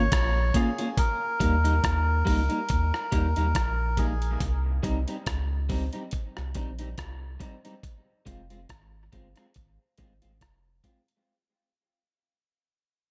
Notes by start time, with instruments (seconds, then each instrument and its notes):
Already playing: melodica C#5
0.12 sub bass A#1, kick, cross-stick, closed hi-hat
0.54 clean electric guitar A#3 C#4 F4, melodica G#4, kick, closed hi-hat
0.78 clean electric guitar A#3 C#4 F4, closed hi-hat
0.97 melodica A#4, kick, closed hi-hat
1.40 sub bass D#2, clean electric guitar G3 A#3 D#4, kick, closed hi-hat
1.64 clean electric guitar G3 A#3 D#4, closed hi-hat
1.84 sub bass D#2, kick, cross-stick, closed hi-hat
2.25 sub bass C#2, clean electric guitar G3 A#3 D#4, kick, open hi-hat
2.49 clean electric guitar G3 A#3 D#4, closed hi-hat
2.69 sub bass D#2, kick, closed hi-hat
2.94 cross-stick
3.12 sub bass D#2, clean electric guitar G3 A#3 D#4, kick, closed hi-hat
3.36 sub bass D#2, clean electric guitar G3 A#3 D#4, closed hi-hat
3.55 sub bass A#1, kick, cross-stick, closed hi-hat
3.97 clean electric guitar G3 A#3 D#4, melodica G#4, kick, closed hi-hat
4.22 closed hi-hat
4.40 sub bass C2, kick, closed hi-hat
4.83 sub bass C2, clean electric guitar G3 C4 D#4, kick, closed hi-hat
5.07 clean electric guitar G3 C4 D#4, closed hi-hat
5.26 sub bass C#2, kick, cross-stick, closed hi-hat
5.69 clean electric guitar G3 C4 D#4, kick, open hi-hat
5.93 clean electric guitar G3 C4 D#4, closed hi-hat
6.11 kick, closed hi-hat
6.37 sub bass C2, cross-stick
6.54 sub bass A#1, clean electric guitar G3 C4 D#4, kick, closed hi-hat
6.79 clean electric guitar G3 C4 D#4, closed hi-hat
6.98 sub bass C2, kick, cross-stick, closed hi-hat
7.40 clean electric guitar G3 C4 D#4, kick, closed hi-hat
7.65 clean electric guitar G3 C4 D#4, closed hi-hat
7.83 kick, closed hi-hat
8.25 sub bass F1, clean electric guitar G#3 C4 F4, kick, closed hi-hat
8.50 clean electric guitar G#3 C4 F4, closed hi-hat
8.69 sub bass G#1, kick, cross-stick, closed hi-hat
9.12 sub bass G1, clean electric guitar G#3 C4 F4, kick, closed hi-hat
9.36 clean electric guitar G#3 C4 F4, cross-stick, closed hi-hat
9.54 sub bass G#1, kick, closed hi-hat
9.98 sub bass G#1, clean electric guitar G#3 C4 F4, kick, closed hi-hat
10.22 sub bass G#1, clean electric guitar G#3 C4 F4, closed hi-hat
10.41 sub bass F1, kick, cross-stick, closed hi-hat
10.84 clean electric guitar G#3 C4 F4, kick, closed hi-hat
11.08 closed hi-hat